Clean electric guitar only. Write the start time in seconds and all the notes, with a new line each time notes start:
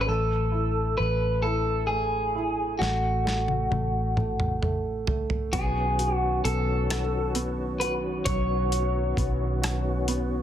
0.01 B4
0.09 A4
0.97 B4
1.42 A4
1.87 G#4
2.79 F#4
5.53 G#4
6.15 F#4
6.45 A4
7.80 B4
8.25 C#5